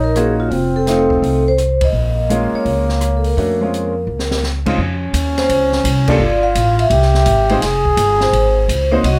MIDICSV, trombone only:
0, 0, Header, 1, 2, 480
1, 0, Start_track
1, 0, Key_signature, -5, "minor"
1, 0, Tempo, 355030
1, 704, Time_signature, 4, 2, 24, 8
1, 6469, Key_signature, -5, "major"
1, 12426, End_track
2, 0, Start_track
2, 0, Title_t, "Trombone"
2, 0, Program_c, 0, 57
2, 0, Note_on_c, 0, 63, 87
2, 687, Note_on_c, 0, 60, 85
2, 707, Note_off_c, 0, 63, 0
2, 2288, Note_off_c, 0, 60, 0
2, 2628, Note_on_c, 0, 58, 74
2, 6250, Note_off_c, 0, 58, 0
2, 6492, Note_on_c, 0, 61, 84
2, 8388, Note_on_c, 0, 65, 85
2, 8409, Note_off_c, 0, 61, 0
2, 9340, Note_on_c, 0, 67, 88
2, 9361, Note_off_c, 0, 65, 0
2, 10287, Note_on_c, 0, 68, 107
2, 10308, Note_off_c, 0, 67, 0
2, 11883, Note_off_c, 0, 68, 0
2, 12219, Note_on_c, 0, 66, 98
2, 12426, Note_off_c, 0, 66, 0
2, 12426, End_track
0, 0, End_of_file